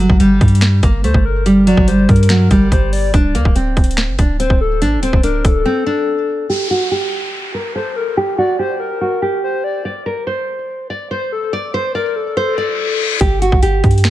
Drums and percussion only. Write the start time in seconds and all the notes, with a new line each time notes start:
0.10 kick
0.20 closed hi-hat
0.41 kick, closed hi-hat
0.48 closed hi-hat
0.55 closed hi-hat
0.61 finger snap, snare, closed hi-hat
0.83 kick, closed hi-hat
1.04 closed hi-hat
1.14 kick
1.46 closed hi-hat
1.67 closed hi-hat
1.77 kick
1.88 closed hi-hat
2.09 kick, closed hi-hat
2.16 closed hi-hat
2.23 closed hi-hat
2.29 finger snap, snare, closed hi-hat
2.51 kick, closed hi-hat
2.72 kick, closed hi-hat
2.93 open hi-hat
3.14 kick, closed hi-hat
3.35 closed hi-hat
3.45 kick
3.56 closed hi-hat
3.77 kick, closed hi-hat
3.84 closed hi-hat
3.91 closed hi-hat
3.97 finger snap, snare, closed hi-hat
4.19 kick, closed hi-hat
4.40 closed hi-hat
4.50 kick
4.82 closed hi-hat
5.03 closed hi-hat
5.13 kick
5.23 closed hi-hat
5.45 kick, closed hi-hat
13.21 kick, closed hi-hat
13.42 closed hi-hat
13.52 kick
13.63 closed hi-hat
13.84 kick, closed hi-hat
13.91 closed hi-hat
13.98 closed hi-hat
14.04 finger snap, snare, closed hi-hat